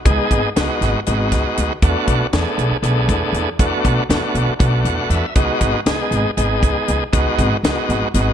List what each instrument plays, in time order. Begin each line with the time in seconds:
0.05 upright bass C#2, tonewheel organ G#3 B3 D#4 G#4, kick, closed hi-hat
0.31 upright bass G#1, kick, closed hi-hat
0.44 muted upright bass stroke
0.56 upright bass C#2, tonewheel organ G#3 B3 D#4 F#4, snare, closed hi-hat
0.81 upright bass G#1, snare, closed hi-hat
0.95 muted upright bass stroke
1.06 upright bass G#1, tonewheel organ G#3 B3 D#4 F#4, closed hi-hat
1.32 upright bass C#2, kick, snare, closed hi-hat
1.57 upright bass D2, closed hi-hat
1.82 upright bass E2, tonewheel organ A3 B3 D4 F#4, kick, closed hi-hat
2.07 upright bass B1, kick, closed hi-hat
2.20 muted upright bass stroke
2.33 upright bass E2, tonewheel organ A3 B3 D4 G#4, snare, closed hi-hat
2.58 upright bass B1, closed hi-hat
2.71 muted upright bass stroke
2.82 upright bass B1, tonewheel organ A3 B3 D4 G#4, closed hi-hat
3.08 upright bass E2, kick, closed hi-hat
3.33 upright bass E2, closed hi-hat
3.59 upright bass E2, tonewheel organ A3 B3 D4 F#4, kick, closed hi-hat
3.84 upright bass B1, kick, closed hi-hat
3.97 muted upright bass stroke
4.09 upright bass E2, tonewheel organ A3 B3 D4 F#4, snare, closed hi-hat
4.35 upright bass B1, closed hi-hat
4.47 muted upright bass stroke
4.59 upright bass B1, tonewheel organ A3 B3 D4 F#4, kick, closed hi-hat
4.85 upright bass E2, tonewheel organ F#5, closed hi-hat
5.10 upright bass E2, tonewheel organ E5, closed hi-hat
5.35 upright bass C#2, tonewheel organ G#3 B3 D#4 F#4, kick, closed hi-hat
5.61 upright bass G#1, kick, closed hi-hat
5.74 muted upright bass stroke
5.86 upright bass C#2, tonewheel organ G#3 B3 D#4 G#4, snare, closed hi-hat
6.11 upright bass G#1, closed hi-hat
6.24 muted upright bass stroke
6.37 upright bass G#1, tonewheel organ G#3 B3 D#4 G#4, closed hi-hat
6.62 upright bass C#2, kick, closed hi-hat
6.88 upright bass C#2, closed hi-hat
7.12 upright bass C#2, tonewheel organ G#3 B3 D#4 F#4, kick, closed hi-hat
7.38 upright bass G#1, kick, closed hi-hat
7.52 muted upright bass stroke
7.63 upright bass C#2, tonewheel organ G#3 B3 D#4 F#4, snare, closed hi-hat
7.89 upright bass G#1, closed hi-hat
8.02 muted upright bass stroke
8.14 upright bass G#1, tonewheel organ G#3 B3 D#4 F#4, closed hi-hat